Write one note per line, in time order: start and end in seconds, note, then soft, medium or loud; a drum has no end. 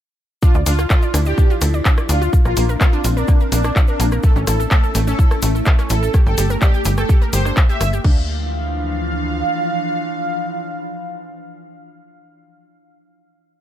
0.42 2.31 F3 medium
0.42 0.50 D4 loud
0.42 2.31 D4 medium
0.42 2.31 E4 medium
0.42 0.56 F4 loud
0.42 kick loud
0.42 shaker medium
0.54 0.64 D2 loud
0.54 0.59 D5 medium
0.54 shaker soft
0.66 0.86 D2 medium
0.66 0.71 D4 loud
0.66 0.79 F4 loud
0.66 open hi-hat loud
0.66 shaker medium
0.79 0.86 F4 loud
0.79 cross-stick medium
0.79 shaker soft
0.90 1.09 F4 loud
0.90 0.98 A4 medium
0.90 kick loud
0.90 clap loud
0.90 shaker soft
1.02 1.07 D5 medium
1.02 shaker soft
1.14 1.34 D2 loud
1.14 1.22 D4 loud
1.14 cross-stick medium
1.14 open hi-hat medium
1.14 shaker loud
1.26 1.52 G4 loud
1.26 1.31 D5 medium
1.26 shaker soft
1.38 1.43 D4 loud
1.38 kick loud
1.38 shaker medium
1.50 1.57 F4 loud
1.50 shaker soft
1.61 1.81 D2 medium
1.61 1.70 A4 medium
1.61 cross-stick medium
1.61 open hi-hat loud
1.61 shaker medium
1.74 1.78 D5 medium
1.74 shaker soft
1.85 1.93 D4 loud
1.85 kick loud
1.85 clap loud
1.85 shaker medium
1.97 2.02 D5 medium
1.97 cross-stick medium
1.97 shaker soft
2.09 2.29 D2 loud
2.09 2.14 D4 loud
2.09 2.28 F4 medium
2.09 open hi-hat medium
2.09 shaker medium
2.22 2.29 F4 loud
2.22 shaker soft
2.33 4.22 A#3 medium
2.33 4.22 C4 medium
2.33 4.22 D4 medium
2.33 2.41 F4 medium
2.33 kick loud
2.33 shaker medium
2.45 2.55 A#1 loud
2.45 2.64 F4 loud
2.45 2.50 A#4 medium
2.45 cross-stick medium
2.45 shaker soft
2.57 2.77 A#1 medium
2.57 2.65 A#3 loud
2.57 open hi-hat loud
2.57 shaker loud
2.69 2.74 A#4 medium
2.69 shaker soft
2.81 2.85 A#3 loud
2.81 3.00 F4 loud
2.81 kick loud
2.81 cross-stick medium
2.81 clap loud
2.81 shaker medium
2.93 3.00 D4 loud
2.93 shaker soft
3.04 3.24 A#1 loud
3.04 3.12 F4 medium
3.04 open hi-hat medium
3.04 shaker medium
3.17 3.36 D4 loud
3.17 3.21 A#4 medium
3.17 shaker soft
3.28 3.36 A#3 loud
3.28 kick loud
3.28 cross-stick medium
3.28 shaker medium
3.40 3.45 A#4 medium
3.40 shaker soft
3.52 3.72 A#1 medium
3.52 3.57 A#3 loud
3.52 3.71 D4 loud
3.52 open hi-hat loud
3.52 shaker loud
3.64 3.72 D4 loud
3.64 cross-stick medium
3.64 shaker soft
3.76 3.84 F4 medium
3.76 kick loud
3.76 clap loud
3.76 shaker medium
3.88 4.07 D4 medium
3.88 3.93 A#4 medium
3.88 shaker soft
4.00 4.19 A#1 loud
4.00 4.08 A#3 loud
4.00 open hi-hat loud
4.00 shaker medium
4.12 4.16 A#4 medium
4.12 cross-stick medium
4.12 shaker soft
4.23 4.28 A3 loud
4.23 8.01 A3 medium
4.23 6.12 C#4 medium
4.23 6.12 E4 medium
4.23 4.37 A4 loud
4.23 kick loud
4.23 shaker medium
4.36 4.45 A1 loud
4.36 4.43 C#4 loud
4.36 shaker soft
4.47 4.67 A1 medium
4.47 4.55 E4 medium
4.47 4.60 A4 loud
4.47 cross-stick medium
4.47 open hi-hat loud
4.47 shaker loud
4.60 4.64 A4 medium
4.60 shaker soft
4.71 4.79 A3 loud
4.71 4.90 A4 loud
4.71 kick loud
4.71 clap loud
4.71 shaker medium
4.83 4.88 A4 medium
4.83 shaker soft
4.95 5.15 A1 loud
4.95 5.00 A3 loud
4.95 cross-stick medium
4.95 open hi-hat loud
4.95 shaker loud
5.07 5.15 C#4 loud
5.07 5.33 A4 loud
5.07 shaker soft
5.19 5.27 E4 medium
5.19 kick loud
5.19 shaker medium
5.31 5.36 A4 medium
5.31 cross-stick medium
5.31 shaker soft
5.42 5.62 A1 medium
5.42 5.50 A3 loud
5.42 open hi-hat loud
5.42 shaker loud
5.55 5.59 A4 medium
5.55 shaker soft
5.66 5.71 A3 loud
5.66 kick loud
5.66 clap loud
5.66 shaker medium
5.79 5.86 C#4 loud
5.79 cross-stick medium
5.79 shaker soft
5.90 6.10 A1 loud
5.90 5.98 E4 medium
5.90 6.09 A4 medium
5.90 open hi-hat loud
5.90 shaker medium
6.03 6.07 A4 medium
6.03 shaker soft
6.14 8.03 A#3 medium
6.14 6.22 G4 loud
6.14 8.03 G4 loud
6.14 kick loud
6.14 cross-stick medium
6.14 shaker medium
6.26 6.36 G1 loud
6.26 6.45 A4 loud
6.26 6.31 G5 medium
6.26 shaker soft
6.38 6.58 G1 medium
6.38 6.43 G4 loud
6.38 open hi-hat loud
6.38 shaker loud
6.50 6.58 A#4 loud
6.50 shaker soft
6.62 6.81 G4 loud
6.62 6.70 D5 medium
6.62 kick loud
6.62 cross-stick medium
6.62 clap loud
6.62 shaker medium
6.74 6.78 G5 medium
6.74 shaker soft
6.85 7.05 G1 loud
6.85 6.93 G4 loud
6.85 open hi-hat loud
6.85 shaker loud
6.97 7.17 A4 loud
6.97 7.02 G5 medium
6.97 cross-stick medium
6.97 shaker soft
7.09 7.14 G4 loud
7.09 kick loud
7.09 shaker medium
7.22 7.29 A#4 loud
7.22 shaker soft
7.33 7.53 G1 medium
7.33 7.41 G4 loud
7.33 7.52 C5 loud
7.33 open hi-hat loud
7.33 shaker loud
7.45 7.53 D4 medium
7.45 cross-stick medium
7.45 shaker soft
7.57 7.65 E5 medium
7.57 kick loud
7.57 clap loud
7.57 shaker soft
7.69 7.74 G4 loud
7.69 7.88 E5 loud
7.69 shaker soft
7.81 8.00 G1 loud
7.81 7.92 E5 loud
7.81 cross-stick medium
7.81 open hi-hat loud
7.81 shaker medium
7.93 8.04 G4 medium
7.93 shaker soft
8.04 9.43 D2 loud
8.04 11.90 E3 medium
8.04 11.90 F3 medium
8.04 11.90 D4 medium
8.04 8.27 D4 medium
8.04 11.90 F5 loud
8.04 kick loud
8.04 crash medium